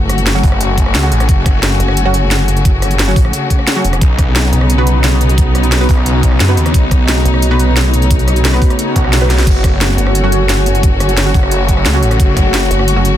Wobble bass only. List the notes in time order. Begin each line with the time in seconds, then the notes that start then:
Already playing: F#1
1.80 F#1
3.16 A1
3.84 E1
4.53 B1
7.25 B1
9.98 F#1
12.71 F#1